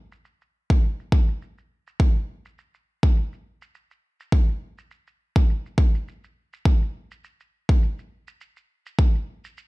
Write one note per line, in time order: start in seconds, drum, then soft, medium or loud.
0.12 shaker medium
0.25 shaker soft
0.42 shaker soft
0.70 kick loud
0.70 shaker medium
0.84 shaker medium
1.00 shaker soft
1.12 kick loud
1.28 shaker medium
1.42 shaker soft
1.58 shaker soft
1.87 shaker medium
2.00 kick loud
2.00 shaker soft
2.17 shaker soft
2.45 shaker medium
2.58 shaker soft
2.74 shaker soft
3.03 kick loud
3.17 shaker soft
3.33 shaker soft
3.62 shaker medium
3.75 shaker soft
3.91 shaker soft
4.20 shaker medium
4.32 kick loud
4.32 shaker soft
4.49 shaker soft
4.78 shaker medium
4.91 shaker soft
5.07 shaker soft
5.36 kick medium
5.36 shaker medium
5.50 shaker medium
5.66 shaker soft
5.78 kick medium
5.95 shaker medium
6.08 shaker soft
6.24 shaker soft
6.53 shaker medium
6.65 kick loud
6.65 shaker soft
6.82 shaker soft
7.11 shaker medium
7.24 shaker soft
7.40 shaker soft
7.69 kick loud
7.69 shaker medium
7.83 shaker medium
7.99 shaker soft
8.28 shaker medium
8.41 shaker soft
8.57 shaker soft
8.86 shaker medium
8.99 kick loud
8.99 shaker soft
9.15 shaker soft
9.44 shaker medium
9.58 shaker soft